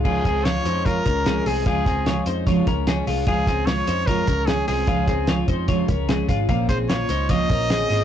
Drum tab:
CC |x-------|--------|--------|--------|
HH |-xxxxxxo|xxxxxxxo|xxxxxxxo|xxxxxxxx|
SD |--o---o-|-oo---o-|-oo---o-|-oo---o-|
BD |oo--oo--|oo--oo--|oo--oo--|oo-ooo-o|

CC |--------|
HH |xxxxxxxo|
SD |-oo---o-|
BD |oo--oo--|